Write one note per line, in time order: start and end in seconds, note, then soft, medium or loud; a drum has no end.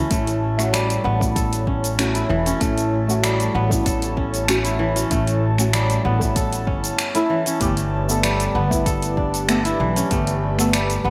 0.00 2.13 E3 medium
0.00 0.57 G3 medium
0.00 0.10 A3 medium
0.00 0.41 B3 medium
0.00 0.11 C#4 medium
0.00 1.67 C#4 medium
0.00 1.22 E4 medium
0.00 7.57 E4 medium
0.00 0.59 F#4 medium
0.00 0.17 A4 medium
0.00 7.57 A4 medium
0.00 7.57 C#5 medium
0.00 11.10 A5 medium
0.10 0.96 A1 loud
0.10 0.54 A3 medium
0.10 2.10 A3 medium
0.10 0.55 C#4 medium
0.10 0.55 E4 loud
0.10 kick loud
0.10 closed hi-hat medium
0.10 cabasa medium
0.27 closed hi-hat soft
0.27 cabasa soft
0.58 1.17 A3 medium
0.58 1.17 C#4 medium
0.58 1.18 F#4 loud
0.58 finger snap soft
0.58 cabasa medium
0.73 3.07 G3 medium
0.73 finger snap loud
0.73 closed hi-hat medium
0.73 cabasa medium
0.90 closed hi-hat soft
0.90 cabasa soft
1.04 2.22 A1 medium
1.04 2.90 B3 medium
1.19 1.95 A3 medium
1.19 1.96 C#4 medium
1.19 kick loud
1.19 cabasa medium
1.23 1.97 E4 medium
1.36 2.67 A4 medium
1.36 kick loud
1.36 closed hi-hat medium
1.36 cabasa medium
1.53 closed hi-hat soft
1.53 cabasa soft
1.67 2.46 C#4 medium
1.67 kick medium
1.84 closed hi-hat soft
1.84 cabasa medium
1.98 2.12 A3 medium
1.98 2.12 C#4 medium
1.98 2.13 F#4 medium
1.98 finger snap loud
1.98 closed hi-hat medium
1.98 cabasa medium
2.15 3.71 E4 medium
2.15 closed hi-hat soft
2.15 cabasa soft
2.29 2.51 E1 medium
2.29 4.63 E3 medium
2.46 4.16 C#4 medium
2.46 closed hi-hat soft
2.46 cabasa medium
2.60 3.46 A1 loud
2.60 3.04 A3 medium
2.60 4.60 A3 medium
2.60 3.05 C#4 medium
2.60 3.05 E4 loud
2.60 kick loud
2.60 closed hi-hat medium
2.60 cabasa medium
2.78 closed hi-hat soft
2.78 cabasa soft
3.08 3.67 A3 medium
3.08 3.67 C#4 medium
3.08 3.68 F#4 medium
3.08 cabasa medium
3.23 5.57 G3 medium
3.23 finger snap loud
3.23 closed hi-hat medium
3.23 cabasa medium
3.40 closed hi-hat soft
3.40 cabasa soft
3.54 3.76 A1 loud
3.54 5.41 B3 medium
3.69 4.44 A3 medium
3.69 4.46 C#4 medium
3.69 kick loud
3.69 cabasa medium
3.73 4.47 E4 medium
3.85 5.03 A1 loud
3.85 5.17 A4 medium
3.85 kick loud
3.85 closed hi-hat medium
3.85 cabasa medium
4.02 closed hi-hat soft
4.02 cabasa soft
4.17 4.96 C#4 medium
4.17 kick medium
4.34 closed hi-hat soft
4.34 cabasa medium
4.47 4.61 A3 medium
4.47 4.62 C#4 medium
4.47 4.62 F#4 medium
4.47 finger snap loud
4.47 closed hi-hat medium
4.47 cabasa medium
4.65 6.21 E4 medium
4.65 closed hi-hat soft
4.65 cabasa soft
4.79 7.13 E3 medium
4.96 6.67 C#4 medium
4.96 closed hi-hat soft
4.96 cabasa medium
5.10 5.96 A1 loud
5.10 5.54 A3 medium
5.10 7.11 A3 medium
5.10 5.55 C#4 medium
5.10 5.55 E4 loud
5.10 kick loud
5.10 closed hi-hat medium
5.10 cabasa medium
5.27 closed hi-hat soft
5.27 cabasa soft
5.58 6.17 A3 medium
5.58 6.18 C#4 medium
5.58 6.18 F#4 medium
5.58 finger snap soft
5.58 cabasa medium
5.73 7.66 G3 medium
5.73 finger snap loud
5.73 closed hi-hat medium
5.73 cabasa medium
5.90 closed hi-hat soft
5.90 cabasa soft
6.05 6.67 A1 medium
6.05 7.91 B3 medium
6.19 6.94 A3 medium
6.19 6.96 C#4 medium
6.19 kick loud
6.19 cabasa medium
6.23 6.97 E4 loud
6.36 7.68 A4 medium
6.36 kick loud
6.36 closed hi-hat medium
6.36 cabasa medium
6.53 closed hi-hat soft
6.53 cabasa soft
6.67 6.88 G1 loud
6.67 7.46 C#4 medium
6.67 kick medium
6.84 closed hi-hat soft
6.84 cabasa medium
6.99 finger snap medium
6.99 closed hi-hat medium
6.99 cabasa medium
7.14 7.57 A3 medium
7.14 7.58 C#4 medium
7.14 8.72 E4 medium
7.14 7.58 E4 loud
7.14 closed hi-hat soft
7.14 cabasa soft
7.30 7.66 E3 medium
7.46 9.23 C#4 medium
7.46 closed hi-hat soft
7.46 cabasa medium
7.60 8.46 G1 loud
7.60 8.04 A3 medium
7.60 9.61 A3 medium
7.60 8.05 B3 medium
7.60 11.10 G4 medium
7.60 8.05 G4 loud
7.60 11.10 B4 medium
7.60 11.10 D5 medium
7.60 kick loud
7.60 closed hi-hat medium
7.60 cabasa medium
7.77 closed hi-hat soft
7.77 cabasa soft
8.08 8.67 A3 medium
8.08 8.68 B3 medium
8.08 8.68 A4 medium
8.08 cabasa medium
8.23 10.57 G3 medium
8.23 finger snap loud
8.23 closed hi-hat medium
8.23 cabasa medium
8.40 closed hi-hat soft
8.40 cabasa soft
8.55 9.71 G1 medium
8.55 10.41 B3 medium
8.70 9.45 A3 medium
8.70 9.46 B3 medium
8.70 9.47 E4 loud
8.70 kick loud
8.70 cabasa medium
8.86 10.18 A4 medium
8.86 kick loud
8.86 closed hi-hat medium
8.86 cabasa medium
9.02 closed hi-hat soft
9.02 cabasa soft
9.17 10.02 D4 medium
9.17 kick medium
9.34 closed hi-hat soft
9.34 cabasa medium
9.48 9.62 A3 medium
9.48 9.62 B3 medium
9.48 9.63 A4 medium
9.48 finger snap medium
9.48 closed hi-hat medium
9.48 cabasa medium
9.65 11.10 E4 medium
9.65 closed hi-hat soft
9.65 cabasa soft
9.80 10.01 B1 medium
9.80 11.10 E3 medium
9.96 11.10 C#4 medium
9.96 closed hi-hat soft
9.96 cabasa medium
10.11 10.96 G1 medium
10.11 11.10 A3 medium
10.11 10.55 A3 medium
10.11 10.55 B3 medium
10.11 10.56 G4 loud
10.11 kick loud
10.11 closed hi-hat medium
10.11 cabasa medium
10.27 closed hi-hat soft
10.27 cabasa soft
10.58 11.10 A3 medium
10.58 11.10 B3 medium
10.58 11.10 A4 loud
10.58 finger snap soft
10.58 cabasa medium
10.73 11.10 G3 medium
10.73 finger snap loud
10.73 closed hi-hat medium
10.73 cabasa medium
10.90 closed hi-hat soft
10.90 cabasa soft
11.04 11.10 G1 medium
11.04 11.10 B3 medium